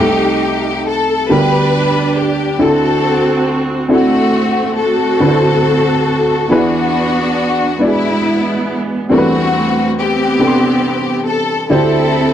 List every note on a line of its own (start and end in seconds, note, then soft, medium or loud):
0.00 1.26 C2 medium
0.00 1.25 C3 medium
0.00 0.99 A3 medium
0.00 0.99 C4 medium
0.00 0.83 D#4 medium
0.00 1.00 D#4 medium
0.00 0.84 G4 loud
0.00 1.00 G4 medium
0.00 1.00 A4 medium
0.89 1.31 A4 loud
1.29 2.56 D2 medium
1.29 2.56 D3 medium
1.29 2.30 G3 medium
1.29 2.30 B3 medium
1.29 2.30 D4 medium
1.29 2.57 D4 medium
1.29 2.31 G4 medium
1.29 2.17 G4 medium
1.29 1.37 A#4 medium
1.29 2.18 B4 loud
1.38 2.34 B4 medium
2.19 2.61 G4 medium
2.58 5.16 D2 medium
2.58 5.16 D3 medium
2.58 3.60 C4 medium
2.58 3.60 D4 medium
2.58 3.60 E4 medium
2.58 3.61 F#4 medium
2.58 3.61 A4 medium
2.62 3.87 C4 medium
2.62 3.87 F#4 medium
2.62 3.59 A4 loud
3.88 4.89 C4 medium
3.88 4.90 D4 medium
3.88 4.90 E4 medium
3.88 4.90 F#4 medium
3.88 4.91 A4 medium
3.93 5.17 A3 medium
3.93 4.78 C4 medium
3.93 4.74 F#4 loud
4.79 6.47 C4 medium
4.79 6.47 F#4 medium
4.79 6.51 A4 loud
5.19 6.46 D2 medium
5.19 6.46 D3 medium
5.19 6.20 C4 medium
5.19 6.20 D4 medium
5.19 6.20 E4 medium
5.19 6.21 F#4 medium
5.19 5.27 B4 medium
5.28 6.24 C5 medium
6.49 9.05 E2 medium
6.49 9.05 E3 medium
6.49 7.50 B3 medium
6.49 7.77 B3 medium
6.49 7.50 D4 medium
6.49 7.77 D4 medium
6.49 7.50 E4 medium
6.49 7.81 F#4 medium
6.49 7.51 G#4 medium
6.49 7.51 B4 medium
7.79 9.06 G#3 medium
7.79 8.79 B3 medium
7.79 9.06 B3 medium
7.79 8.80 D4 medium
7.79 8.80 E4 medium
7.79 8.77 E4 loud
7.79 7.87 F#4 soft
7.79 8.81 D5 medium
7.87 8.83 G#4 medium
9.09 11.65 E2 medium
9.09 11.65 E3 medium
9.09 10.10 G3 medium
9.09 10.36 A3 medium
9.09 10.09 C4 medium
9.09 9.98 C4 medium
9.09 10.10 D4 medium
9.09 9.93 F#4 loud
9.09 10.10 A4 medium
9.09 9.17 A#4 medium
9.18 10.14 B4 medium
9.99 11.23 B3 medium
9.99 11.23 C4 medium
9.99 11.23 G4 loud
10.39 11.39 C3 medium
10.39 11.39 D4 medium
10.39 11.40 G4 medium
10.39 11.40 A4 medium
10.39 10.46 B4 medium
10.47 11.43 C6 medium
11.27 11.69 A4 medium
11.69 12.33 D2 medium
11.69 12.33 D3 medium
11.69 12.33 C4 medium
11.69 12.33 D4 medium
11.69 12.33 E4 medium
11.69 12.33 G4 medium
11.69 12.33 A4 loud
11.69 12.33 A4 medium
11.69 12.33 C5 medium